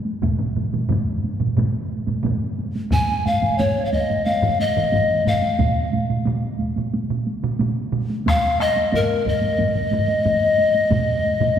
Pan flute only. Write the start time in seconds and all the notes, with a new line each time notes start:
2.93 G#5
3.27 F5
3.58 C#5
3.85 F5
3.93 D#5
4.25 F5
4.60 D#5
5.27 F5
8.29 F5
8.61 D#5
8.95 A#4
9.28 D#5